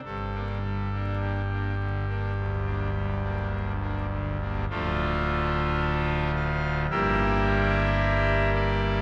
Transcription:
<<
  \new Staff \with { instrumentName = "Pipe organ" } { \time 4/4 \key g \minor \tempo 4 = 53 a'4 g'2 r4 | \key d \minor <d' f' a'>4. f''8 <g' bes' e''>4. d''8 | }
  \new Staff \with { instrumentName = "Pipe organ" } { \time 4/4 \key g \minor << { g,16 <bes d'>16 g16 <bes d'>8 <bes d'>16 d16 <bes d'>16 d,16 <bes d'>16 g16 <bes d'>8 <bes d'>16 d16 <bes d'>16 | \key d \minor <d, f a>2 <g, g bes e'>2 | } \\ { g,,2 d,,2 | d,,2 g,,2 | } >> }
>>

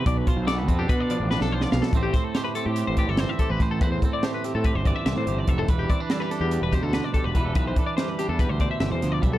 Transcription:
<<
  \new Staff \with { instrumentName = "Clean electric guitar" } { \time 9/8 \key a \minor \tempo 4. = 96 d''16 b'16 c''8 d''16 b'8 g'16 b'16 d''16 d''8 b'16 a'16 c''16 d''16 f''16 a'16 | r16 g'16 c''16 a'16 c''16 b'16 a'16 g'8 c''16 g'16 a'16 c''16 e''16 a'16 b'8 a'16 | b'16 c''16 a'16 d''16 c''16 b'16 g'16 a'16 b'16 c''16 d''16 e''16 e''16 c''8 d''16 e''16 a'16 | r16 g'16 d''16 b'16 d''16 b'16 a'16 g'8 b'16 g'16 a'16 b'16 d''16 a'16 b'8 a'16 |
b'16 c''16 a'16 d''16 c''16 b'16 g'16 a'16 b'16 c''16 d''16 e''16 e''16 c''8 d''16 e''16 a'16 | }
  \new Staff \with { instrumentName = "Clean electric guitar" } { \time 9/8 \key a \minor << { r8 f'8 a'8 c'16 d'8. f'8 d'8 f'4 | <a c' g' c''>8 c'8 g'8 c'8 g'8 d''8 c'8 g'8 c''8 | c''8 c'8 g'8 c'8 g'8 d''8 c'8 g'8 a'16 c''16 | b'8 c'16 d'16 e'16 g'16 d'8 g'8 c''8 d'8 g'8 b'8 |
b'8 d'8 g'8 d'8 g'8 c''2 | } \\ { b,4 b4. f4. b,8 | a,4 a4. e4. a,8 | a,4 a4. e4. a,8 | e4 g4. b,4. e8 |
e4 g4. b,8 e8 f8 g8 | } >> }
  \new Staff \with { instrumentName = "Picked electric bass" } { \clef bass \time 9/8 \key a \minor b,,8 r16 b,,8. f,8 b,8. a,,8 b,,8. b,,16 r16 | a,,8 r4 r16 a,8 a,,8 g,,8 r8 a,,16 a,,8 | e,8 r4 r16 a,8 g,,8 r16 c,16 a,16 g,,8 f,,8 | e,,8 r4 r16 e,8 e,,8 d,8 r8 e,,16 e,,8 |
b,,8 r4 r16 e,8 d,8 r16 g,,16 e,16 d,8 b,,8 | }
  \new DrumStaff \with { instrumentName = "Drums" } \drummode { \time 9/8 <hh bd>8 <hh bd>8 <hh sn>8 <hh bd>8 <hh bd>8 hh8 sn16 sn8 sn16 sn16 sn16 | <hh bd>8 <hh bd sn>8 <hh sn>8 hh8 hh8 <hh bd>8 <hh sn>8 <hh bd>8 <hh bd sn>8 | <hh bd>8 <hh bd>8 <hh sn>8 <hh sn>8 <hh bd>8 <hh bd>8 <hh sn>8 hh8 <hh bd>8 | <hh bd>8 <hh bd>8 <hh sn>8 <hh sn>8 hh8 <hh bd sn>8 <hh sn>8 <hh bd>8 <hh bd>8 |
<hh bd>8 <hh bd>8 <hh sn>8 <hh sn>8 <hh bd>8 <hh bd>8 <hh sn>8 <hh sn>8 <hh bd>8 | }
>>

